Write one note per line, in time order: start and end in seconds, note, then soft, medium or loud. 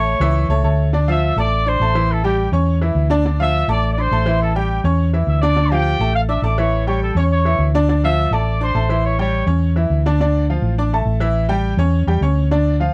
0.00 0.15 A1 medium
0.00 0.16 A3 medium
0.00 0.16 A4 medium
0.00 0.16 C#5 medium
0.00 0.61 C#5 loud
0.00 0.61 C#6 medium
0.20 0.47 C#2 medium
0.20 0.45 E3 medium
0.20 0.45 E4 medium
0.20 0.45 E5 loud
0.49 0.62 C#2 medium
0.49 0.61 A3 medium
0.49 0.62 A4 medium
0.49 0.62 C#5 medium
0.63 1.31 D2 medium
0.63 0.88 A3 medium
0.63 0.88 A4 medium
0.63 0.88 C#5 medium
0.93 1.05 D3 medium
0.93 1.05 D4 medium
0.93 1.05 D5 medium
1.08 1.31 F3 medium
1.08 1.31 F4 medium
1.08 1.36 E5 loud
1.08 1.32 F5 medium
1.08 1.35 E6 medium
1.36 1.77 A1 medium
1.36 1.61 A3 medium
1.36 1.61 A4 medium
1.36 1.65 D5 loud
1.36 1.61 A5 medium
1.36 1.64 D6 medium
1.66 1.78 D4 medium
1.66 2.10 C5 loud
1.66 1.78 D5 medium
1.66 2.11 C6 medium
1.66 1.78 D6 medium
1.80 2.47 A1 medium
1.80 1.93 A3 medium
1.80 1.93 A4 medium
1.80 1.93 A5 medium
1.95 2.18 E3 medium
1.95 2.19 E4 medium
1.95 2.19 E5 medium
2.11 2.24 A4 medium
2.11 2.24 A5 medium
2.24 2.47 G3 medium
2.24 2.47 G4 medium
2.24 2.51 G4 medium
2.24 2.48 G5 medium
2.24 2.52 G5 medium
2.52 2.93 E2 medium
2.52 2.76 C#4 medium
2.52 2.77 C#5 medium
2.52 2.77 C#6 medium
2.81 3.05 E3 medium
2.81 3.05 E4 medium
2.81 3.06 E5 medium
2.95 3.62 D2 medium
3.10 3.22 D3 medium
3.10 3.22 D4 loud
3.10 3.23 D5 medium
3.25 3.37 D3 medium
3.25 3.37 D4 medium
3.25 3.37 D5 medium
3.40 3.63 F3 medium
3.40 3.63 F4 medium
3.40 3.67 E5 loud
3.40 3.63 F5 medium
3.40 3.67 E6 loud
3.68 4.08 A1 medium
3.68 3.92 A3 medium
3.68 3.92 A4 medium
3.68 3.90 D5 loud
3.68 3.92 A5 medium
3.68 3.89 D6 medium
3.93 3.99 D5 medium
3.98 4.09 D4 medium
3.98 4.42 C5 loud
3.98 4.09 D5 medium
3.98 4.42 C6 medium
3.98 4.10 D6 medium
4.11 4.78 A1 medium
4.11 4.24 A3 medium
4.11 4.24 A4 medium
4.11 4.24 A5 medium
4.26 4.50 E3 medium
4.26 4.50 E4 medium
4.26 4.50 E5 medium
4.42 4.55 A4 medium
4.42 4.55 A5 medium
4.55 4.79 G3 medium
4.55 4.79 G4 medium
4.55 4.83 G4 medium
4.55 4.82 G5 medium
4.55 4.79 G5 medium
4.84 5.24 E2 medium
4.84 5.08 C#4 medium
4.84 5.08 C#5 medium
4.84 5.08 C#6 medium
5.13 5.37 E3 medium
5.13 5.37 E4 medium
5.13 5.37 E5 medium
5.27 5.94 D2 medium
5.27 5.41 E5 medium
5.27 5.42 E6 medium
5.42 5.54 D3 medium
5.42 5.54 D4 loud
5.42 5.69 D5 loud
5.42 5.55 D5 medium
5.42 5.69 D6 medium
5.56 5.68 D3 medium
5.56 5.68 D4 medium
5.56 5.69 D5 medium
5.71 5.95 F3 medium
5.71 5.95 F4 medium
5.71 6.12 G4 medium
5.71 5.95 F5 medium
5.71 6.15 G5 loud
5.99 6.40 A1 medium
5.99 6.24 A3 medium
5.99 6.24 A4 medium
5.99 6.24 A5 medium
6.14 6.21 F5 loud
6.29 6.41 D4 medium
6.29 6.41 D5 medium
6.29 6.43 E5 loud
6.29 6.41 D6 medium
6.29 6.42 E6 medium
6.42 7.09 A1 medium
6.42 6.55 A3 medium
6.42 6.55 A4 medium
6.42 6.56 D5 medium
6.42 6.55 A5 medium
6.42 6.56 D6 medium
6.57 6.82 E3 medium
6.57 6.82 E4 medium
6.57 6.87 C#5 medium
6.57 6.82 E5 medium
6.57 6.86 C#6 medium
6.87 7.10 G3 medium
6.87 7.11 G4 medium
6.87 7.01 C#5 medium
6.87 7.11 G5 medium
6.87 7.00 C#6 medium
7.03 7.16 A4 medium
7.03 7.16 A5 medium
7.15 7.56 E2 medium
7.15 7.40 C#4 medium
7.15 7.40 C#5 medium
7.15 7.24 C#5 medium
7.15 7.40 C#6 medium
7.15 7.24 C#6 medium
7.32 7.72 C#5 medium
7.32 7.72 C#6 medium
7.45 7.69 E3 medium
7.45 7.69 E4 medium
7.45 7.69 E5 medium
7.59 8.26 D2 medium
7.75 7.86 D3 medium
7.75 7.86 D4 loud
7.75 7.86 D5 loud
7.89 8.00 D3 medium
7.89 8.01 D4 medium
7.89 8.01 D5 medium
8.04 8.27 F3 medium
8.04 8.27 F4 medium
8.04 8.31 E5 loud
8.04 8.27 F5 medium
8.04 8.31 E6 medium
8.31 8.71 A1 medium
8.31 8.55 A3 medium
8.31 8.56 A4 medium
8.31 8.61 D5 loud
8.31 8.56 A5 medium
8.31 8.61 D6 medium
8.61 8.72 D4 medium
8.61 9.02 C5 loud
8.61 8.73 D5 medium
8.61 9.02 C6 medium
8.61 8.73 D6 medium
8.74 9.42 A1 medium
8.74 8.86 A3 medium
8.74 8.87 A4 medium
8.74 8.87 A5 medium
8.89 9.13 E3 medium
8.89 9.13 E4 medium
8.89 9.13 E5 medium
9.05 9.19 C#5 medium
9.05 9.19 C#6 medium
9.19 9.42 G3 medium
9.19 9.42 G4 medium
9.19 9.47 C#5 medium
9.19 9.43 G5 medium
9.19 9.46 C#6 medium
9.47 9.87 E2 medium
9.47 9.71 C#4 medium
9.47 9.71 C#5 medium
9.47 9.71 C#6 medium
9.76 10.00 E3 medium
9.76 10.00 E4 medium
9.76 10.00 E5 medium
9.90 10.57 D2 medium
10.06 10.17 D3 medium
10.06 10.18 D4 loud
10.06 10.18 D5 medium
10.20 10.44 D3 medium
10.20 10.44 D4 medium
10.20 10.44 D5 medium
10.50 10.73 F3 medium
10.50 10.73 F4 medium
10.50 10.73 F5 medium
10.62 11.03 A1 medium
10.78 10.90 D4 medium
10.78 10.90 D5 medium
10.78 10.90 D6 medium
10.93 11.16 A3 medium
10.93 11.17 A4 medium
10.93 11.17 A5 medium
11.05 11.73 A1 medium
11.20 11.44 E3 medium
11.20 11.44 E4 medium
11.20 11.45 E5 medium
11.49 11.73 G3 medium
11.49 11.73 G4 medium
11.49 11.73 G5 medium
11.77 12.05 E2 loud
11.77 12.02 C#4 medium
11.77 12.02 C#5 medium
11.77 12.03 C#6 medium
12.07 12.21 E2 medium
12.07 12.19 G3 medium
12.07 12.19 G4 medium
12.07 12.20 G5 medium
12.21 12.88 D2 medium
12.21 12.46 C#4 medium
12.21 12.46 C#5 medium
12.21 12.46 C#6 medium
12.51 12.75 D3 medium
12.51 12.75 D4 medium
12.51 12.75 D5 medium
12.80 12.94 F3 medium
12.80 12.94 F4 medium
12.80 12.94 F5 medium